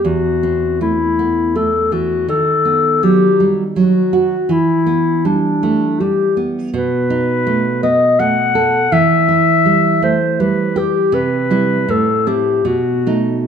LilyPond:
<<
  \new Staff \with { instrumentName = "Clarinet" } { \time 3/4 \key e \minor \tempo 4 = 81 fis'4 e'4 a'8 fis'8 | a'4 g'8 r8 fis'4 | e'4 d'4 g'8 r8 | b'4. dis''8 fis''4 |
e''4. c''8 b'8 g'8 | b'4 a'8 g'8 fis'8 r8 | }
  \new Staff \with { instrumentName = "Nylon-string guitar" } { \time 3/4 \key e \minor e,8 c'8 a8 b8 a8 e8 | dis8 b8 fis8 g8 fis8 fis'8 | e8 b8 g8 a8 g8 b8 | b,8 dis'8 a8 b8 a8 a'8 |
e8 e'8 g8 a8 g8 g'8 | c8 <g e'>8 a,8 <c' e'>8 b,8 <a dis'>8 | }
>>